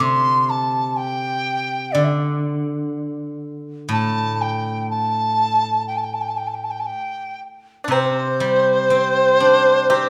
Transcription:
0.00 1.96 C3 soft
0.00 0.99 D3 soft
0.00 0.27 A3 soft
0.00 0.51 D4 soft
0.00 0.75 E4 soft
0.00 0.99 A4 soft
0.00 0.51 C6 medium
0.50 0.98 A5 medium
0.97 1.94 G5 medium
1.92 4.89 D3 soft
1.92 2.06 D5 medium
2.04 2.06 E5 medium
3.89 6.89 A2 soft
3.93 4.43 A5 medium
4.41 4.90 G5 medium
4.90 5.86 A5 medium
5.88 5.98 G5 medium
5.97 6.05 A5 medium
6.04 6.15 G5 medium
6.14 6.23 A5 medium
6.21 6.30 G5 medium
6.29 6.39 A5 medium
6.37 6.49 G5 medium
6.47 6.56 A5 soft
6.54 6.65 G5 soft
6.64 6.72 A5 soft
6.71 6.81 G5 medium
6.80 6.87 A5 soft
6.86 7.40 G5 medium
7.84 10.09 C3 soft
7.84 7.91 D4 soft
7.90 9.86 C4 medium
7.90 10.09 C5 medium
7.90 high woodblock medium
8.40 10.09 G3 soft
8.90 10.09 C4 soft
9.40 10.09 D4 soft
9.90 10.09 C4 medium
9.90 10.09 G4 soft
9.90 high woodblock soft

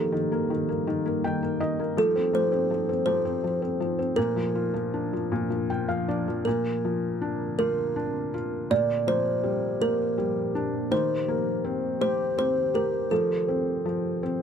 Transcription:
0.00 0.11 D#3 medium
0.00 1.94 G3 medium
0.00 0.30 A#3 soft
0.00 1.93 A#3 medium
0.00 4.13 D#4 medium
0.00 0.54 G4 medium
0.12 0.49 D#3 medium
0.32 0.67 A#3 medium
0.50 0.86 D#3 medium
0.69 1.04 A#3 soft
0.87 1.23 D#3 medium
1.06 1.41 A#3 soft
1.24 1.59 D#3 medium
1.24 1.58 G5 medium
1.43 1.78 A#3 medium
1.60 1.96 D#3 soft
1.60 1.94 D#5 medium
1.79 1.97 A#3 soft
1.97 2.32 F3 medium
1.97 6.42 F3 medium
1.97 4.15 A4 medium
1.97 2.35 A4 medium
2.15 2.50 C4 soft
2.33 2.69 F3 medium
2.33 3.05 C5 medium
2.52 2.88 C4 medium
2.70 3.05 F3 soft
2.89 3.24 C4 soft
3.06 3.42 F3 medium
3.06 3.76 C5 medium
3.25 3.60 C4 soft
3.44 3.79 F3 soft
3.62 3.97 C4 soft
3.80 4.16 F3 soft
3.99 4.17 C4 soft
4.16 5.30 A#2 medium
4.16 6.43 D4 medium
4.16 5.65 A#4 medium
4.16 6.43 A#4 medium
4.36 4.72 F3 soft
4.55 5.69 F4 soft
4.74 5.12 F3 soft
4.94 6.07 D4 soft
5.13 5.49 F3 soft
5.32 6.43 A#2 medium
5.50 5.87 F3 soft
5.70 6.44 F4 soft
5.70 5.87 G5 medium
5.88 6.26 F3 soft
5.88 6.06 F5 medium
6.08 6.45 D4 soft
6.08 6.44 D5 medium
6.28 6.46 F3 soft
6.45 8.67 A#2 medium
6.45 8.68 D3 medium
6.45 8.68 C4 medium
6.45 7.57 A#4 medium
6.45 8.68 A#4 medium
6.85 8.30 F3 soft
7.22 7.95 D4 soft
7.59 8.32 F4 medium
7.59 8.74 A#4 medium
7.96 8.68 D4 soft
8.34 8.70 F4 soft
8.70 10.89 A#2 medium
8.70 10.87 A#2 medium
8.70 10.89 F3 medium
8.70 10.89 A#3 medium
8.70 10.89 G4 medium
8.70 9.05 D5 medium
9.07 10.51 F3 soft
9.07 9.84 C5 loud
9.44 10.16 G3 medium
9.81 10.88 A#3 medium
9.81 10.60 A#4 medium
10.18 10.89 G3 medium
10.55 10.91 D4 soft
10.91 13.07 D#3 medium
10.91 13.09 D#3 medium
10.91 13.09 C4 medium
10.91 13.09 G4 medium
10.91 12.00 C5 medium
11.28 12.70 A#3 medium
11.64 12.36 C4 medium
12.01 12.73 G4 medium
12.01 12.37 C5 medium
12.38 13.09 C4 soft
12.38 12.76 C5 medium
12.74 13.10 G4 soft
12.74 13.12 A#4 medium
13.11 14.42 F3 medium
13.11 13.84 F3 medium
13.11 14.42 C4 medium
13.11 14.42 A4 medium
13.48 14.21 C4 soft
13.85 14.42 F3 soft
14.23 14.42 C4 medium

